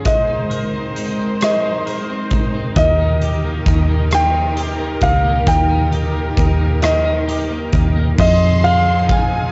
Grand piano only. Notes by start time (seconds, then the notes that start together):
0.06 D#5
1.43 D#5
2.77 D#5
4.15 G5
5.03 F5
5.48 G5
6.83 D#5
8.20 D#5
8.64 F5